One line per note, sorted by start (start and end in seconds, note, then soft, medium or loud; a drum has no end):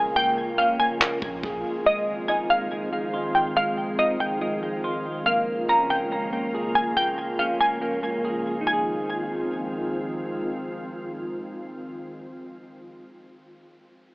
0.00 0.76 A#1 loud
0.00 1.83 C#3 medium
0.00 1.82 F3 medium
0.00 1.82 G#3 medium
0.00 0.15 A#3 medium
0.00 1.83 A#3 medium
0.00 0.16 C#4 medium
0.00 5.23 F4 medium
0.00 1.01 G#4 medium
0.00 0.15 G#5 medium
0.16 0.78 A#3 medium
0.16 0.56 G5 loud
0.58 1.86 C#4 medium
0.58 0.78 F5 medium
0.80 0.99 A#3 medium
0.80 1.40 G#5 medium
1.00 1.21 A#3 medium
1.00 clap loud
1.22 1.43 A#1 loud
1.22 1.86 A#3 medium
1.22 kick medium
1.43 1.64 A#1 loud
1.43 1.86 G#4 medium
1.43 kick loud
1.86 5.23 D#3 medium
1.86 5.23 F3 medium
1.86 2.49 G#3 medium
1.86 8.63 G#3 medium
1.86 5.23 C4 medium
1.86 2.26 D#5 loud
2.28 3.56 D#4 medium
2.28 2.49 G#5 medium
2.50 2.71 G#3 medium
2.50 3.31 F5 medium
2.72 2.91 G#3 medium
2.92 3.55 G#3 medium
3.14 4.41 F4 medium
3.35 3.55 G5 medium
3.56 4.19 G#3 loud
3.56 3.96 F5 medium
3.99 5.26 D#4 medium
3.99 4.19 D#5 medium
4.20 4.40 G#3 medium
4.20 4.80 G5 medium
4.41 4.62 G#3 medium
4.63 5.26 G#3 medium
4.84 5.27 F4 medium
5.26 8.64 C#3 medium
5.26 8.64 F3 medium
5.26 5.90 A#3 medium
5.26 8.64 A#3 medium
5.26 8.64 F4 medium
5.26 5.66 F5 loud
5.69 6.97 C#4 medium
5.69 5.89 A#5 medium
5.90 6.11 A#3 medium
5.90 6.71 G5 medium
6.12 6.31 A#3 medium
6.33 6.95 A#3 medium
6.54 7.82 G#4 medium
6.75 6.96 G#5 medium
6.97 7.59 A#3 medium
6.97 7.37 G5 loud
7.39 8.67 C#4 medium
7.39 7.59 F5 medium
7.61 7.80 A#3 medium
7.61 8.21 G#5 medium
7.81 8.02 A#3 medium
8.03 8.61 A#3 medium
8.25 8.67 G#4 medium
8.61 11.88 D#4 medium
8.67 11.94 D#3 medium
8.67 11.94 F3 medium
8.67 11.94 G#3 medium
8.67 11.94 C4 medium
8.67 11.94 F4 medium
8.67 9.91 G#5 medium
8.73 12.00 G#4 medium